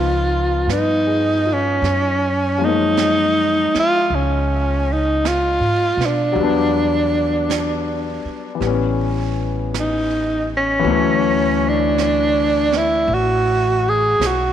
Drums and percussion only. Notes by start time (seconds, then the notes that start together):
0.69 brush sweep, snare, hi-hat pedal
1.84 brush sweep, snare
2.97 brush sweep, snare, hi-hat pedal
3.75 snare
4.12 brush sweep
5.25 brush sweep, snare, hi-hat pedal
6.01 snare
6.38 brush sweep
7.50 brush sweep, snare, hi-hat pedal
8.62 brush sweep, snare
9.74 brush sweep, snare, hi-hat pedal
10.85 brush sweep
11.98 brush sweep, snare, hi-hat pedal
12.72 snare
13.10 brush sweep
14.21 brush sweep, snare, hi-hat pedal